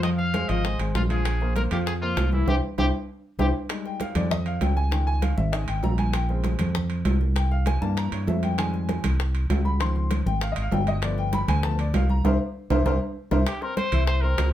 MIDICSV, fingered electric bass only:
0, 0, Header, 1, 2, 480
1, 0, Start_track
1, 0, Key_signature, -4, "minor"
1, 0, Tempo, 305344
1, 55, Time_signature, 4, 2, 24, 8
1, 22841, End_track
2, 0, Start_track
2, 0, Title_t, "Fingered electric bass"
2, 0, Program_c, 0, 33
2, 0, Note_on_c, 0, 41, 86
2, 687, Note_off_c, 0, 41, 0
2, 776, Note_on_c, 0, 32, 87
2, 1222, Note_off_c, 0, 32, 0
2, 1247, Note_on_c, 0, 32, 69
2, 1474, Note_off_c, 0, 32, 0
2, 1495, Note_on_c, 0, 34, 86
2, 2607, Note_off_c, 0, 34, 0
2, 2695, Note_on_c, 0, 41, 88
2, 3364, Note_off_c, 0, 41, 0
2, 3408, Note_on_c, 0, 36, 90
2, 3857, Note_off_c, 0, 36, 0
2, 3888, Note_on_c, 0, 36, 89
2, 4069, Note_off_c, 0, 36, 0
2, 4371, Note_on_c, 0, 36, 84
2, 4551, Note_off_c, 0, 36, 0
2, 5330, Note_on_c, 0, 36, 87
2, 5510, Note_off_c, 0, 36, 0
2, 6529, Note_on_c, 0, 41, 90
2, 7201, Note_off_c, 0, 41, 0
2, 7250, Note_on_c, 0, 37, 87
2, 8365, Note_off_c, 0, 37, 0
2, 8453, Note_on_c, 0, 32, 88
2, 8900, Note_off_c, 0, 32, 0
2, 8933, Note_on_c, 0, 32, 68
2, 9157, Note_off_c, 0, 32, 0
2, 9169, Note_on_c, 0, 34, 90
2, 10285, Note_off_c, 0, 34, 0
2, 10372, Note_on_c, 0, 41, 93
2, 11043, Note_off_c, 0, 41, 0
2, 11085, Note_on_c, 0, 36, 88
2, 12203, Note_off_c, 0, 36, 0
2, 12290, Note_on_c, 0, 43, 87
2, 12739, Note_off_c, 0, 43, 0
2, 12767, Note_on_c, 0, 43, 69
2, 12994, Note_off_c, 0, 43, 0
2, 13010, Note_on_c, 0, 41, 88
2, 14126, Note_off_c, 0, 41, 0
2, 14215, Note_on_c, 0, 36, 86
2, 14885, Note_off_c, 0, 36, 0
2, 14928, Note_on_c, 0, 37, 90
2, 16045, Note_off_c, 0, 37, 0
2, 16129, Note_on_c, 0, 32, 88
2, 16578, Note_off_c, 0, 32, 0
2, 16610, Note_on_c, 0, 32, 70
2, 16836, Note_off_c, 0, 32, 0
2, 16851, Note_on_c, 0, 31, 97
2, 17966, Note_off_c, 0, 31, 0
2, 18047, Note_on_c, 0, 38, 96
2, 18720, Note_off_c, 0, 38, 0
2, 18772, Note_on_c, 0, 36, 92
2, 19219, Note_off_c, 0, 36, 0
2, 19249, Note_on_c, 0, 36, 101
2, 19430, Note_off_c, 0, 36, 0
2, 19970, Note_on_c, 0, 36, 103
2, 20151, Note_off_c, 0, 36, 0
2, 20212, Note_on_c, 0, 36, 99
2, 20391, Note_off_c, 0, 36, 0
2, 20932, Note_on_c, 0, 36, 105
2, 21112, Note_off_c, 0, 36, 0
2, 21886, Note_on_c, 0, 36, 87
2, 22559, Note_off_c, 0, 36, 0
2, 22611, Note_on_c, 0, 37, 91
2, 22841, Note_off_c, 0, 37, 0
2, 22841, End_track
0, 0, End_of_file